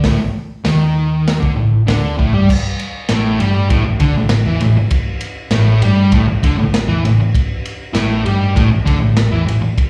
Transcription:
0.04 picked electric bass A1, distorted electric guitar A2, kick, snare, open hi-hat
0.20 muted picked electric bass stroke, muted distorted electric guitar stroke
0.65 picked electric bass D#2, distorted electric guitar D#3, snare, open hi-hat
1.28 snare, open hi-hat
1.40 picked electric bass D2, distorted electric guitar D3, kick
1.56 picked electric bass A1, distorted electric guitar A2
1.87 picked electric bass D2, distorted electric guitar D3, snare, open hi-hat
2.18 picked electric bass A1, distorted electric guitar A2, kick
2.33 picked electric bass G2, distorted electric guitar G3
2.49 kick, crash
2.79 ride
3.09 picked electric bass A1, distorted electric guitar A2, snare, ride
3.40 picked electric bass G2, distorted electric guitar G3, ride
3.70 picked electric bass A1, distorted electric guitar A2, kick, ride
3.85 muted picked electric bass stroke, muted distorted electric guitar stroke
4.00 picked electric bass D2, distorted electric guitar D3, kick, ride
4.14 picked electric bass A1, distorted electric guitar A2
4.29 snare, ride
4.46 picked electric bass E2, distorted electric guitar E3
4.60 picked electric bass A1, distorted electric guitar A2, ride
4.76 muted picked electric bass stroke, muted distorted electric guitar stroke
4.91 kick, ride
5.21 ride
5.51 picked electric bass A1, distorted electric guitar A2, snare, ride
5.82 picked electric bass G2, distorted electric guitar G3, ride
6.12 picked electric bass A1, distorted electric guitar A2, kick, ride
6.28 muted picked electric bass stroke, muted distorted electric guitar stroke
6.42 picked electric bass D2, distorted electric guitar D3, kick, ride
6.58 picked electric bass A1, distorted electric guitar A2
6.74 snare, ride
6.88 picked electric bass E2, distorted electric guitar E3
7.03 picked electric bass A1, distorted electric guitar A2, ride
7.18 muted picked electric bass stroke, muted distorted electric guitar stroke
7.35 kick, ride
7.65 ride
7.93 picked electric bass A1, distorted electric guitar A2, snare, ride
8.24 picked electric bass G2, distorted electric guitar G3, ride
8.55 picked electric bass A1, distorted electric guitar A2, kick, ride
8.71 muted distorted electric guitar stroke, muted picked electric bass stroke
8.85 picked electric bass D2, distorted electric guitar D3, kick, ride
9.00 picked electric bass A1, distorted electric guitar A2
9.17 snare, ride
9.31 picked electric bass E2, distorted electric guitar E3
9.46 picked electric bass A1, distorted electric guitar A2, ride
9.60 muted picked electric bass stroke, muted distorted electric guitar stroke
9.78 kick, ride

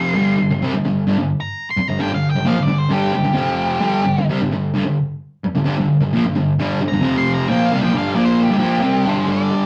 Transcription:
Already playing: distorted electric guitar F2 C3 F3, lead electric guitar C6
0.14 distorted electric guitar G2 D3 G3
0.38 distorted electric guitar G2 D3
0.51 distorted electric guitar G2 D3
0.62 distorted electric guitar C3 G3
0.73 distorted electric guitar G2 D3
0.85 distorted electric guitar G2 D3
1.07 distorted electric guitar G2 D3
1.18 distorted electric guitar G2 D3
1.40 lead electric guitar A#5
1.71 lead electric guitar C6
1.77 muted distorted electric guitar stroke
1.88 distorted electric guitar G2 D3, lead electric guitar A#5
1.99 distorted electric guitar G2 D3, lead electric guitar G5
2.13 distorted electric guitar G2 D3, lead electric guitar F5
2.30 lead electric guitar G5
2.36 distorted electric guitar G2 D3
2.45 distorted electric guitar A#2 F3, lead electric guitar F5
2.57 distorted electric guitar G2 D3
2.62 lead electric guitar D5
2.67 distorted electric guitar G2 D3
2.78 lead electric guitar C5
2.89 distorted electric guitar G2 D3 G3, lead electric guitar G4
3.13 distorted electric guitar G2 D3
3.24 distorted electric guitar G2 D3
3.34 distorted electric guitar F2 C3 F3
3.80 distorted electric guitar G2 D3 G3
4.05 distorted electric guitar G2 D3
4.19 distorted electric guitar G2 D3
4.30 distorted electric guitar C3 G3
4.42 distorted electric guitar G2 D3
4.52 distorted electric guitar G2 D3
4.75 distorted electric guitar G2 D3
4.85 distorted electric guitar G2 D3
5.45 muted distorted electric guitar stroke
5.55 distorted electric guitar G2 D3
5.65 distorted electric guitar G2 D3
5.79 distorted electric guitar G2 D3
6.01 distorted electric guitar G2 D3
6.13 distorted electric guitar A#2 F3
6.26 distorted electric guitar G2 D3
6.36 distorted electric guitar G2 D3
6.60 distorted electric guitar G2 D3 G3
6.81 distorted electric guitar G2 D3
6.88 lead electric guitar A#5
6.92 distorted electric guitar G2 D3
7.01 distorted electric guitar F2 C3 F3
7.18 lead electric guitar C6
7.34 lead electric guitar A#5
7.48 distorted electric guitar A#2 F3 A#3, lead electric guitar G5
7.66 lead electric guitar F5
7.72 distorted electric guitar C3 G3
7.81 distorted electric guitar A#2 F3, lead electric guitar G5
7.93 distorted electric guitar G2 D3 G3, lead electric guitar F5
8.15 distorted electric guitar A#2 F3 A#3, lead electric guitar D5
8.25 lead electric guitar C5
8.43 lead electric guitar G4
8.48 distorted electric guitar G2 D3
8.58 distorted electric guitar A#2 F3 A#3
8.81 distorted electric guitar C3 G3 C4
9.05 distorted electric guitar G2 D3 G3, lead electric guitar C5
9.26 distorted electric guitar G2 D3
9.32 distorted electric guitar G3, lead electric guitar D5
9.51 distorted electric guitar G3
9.55 distorted electric guitar D3

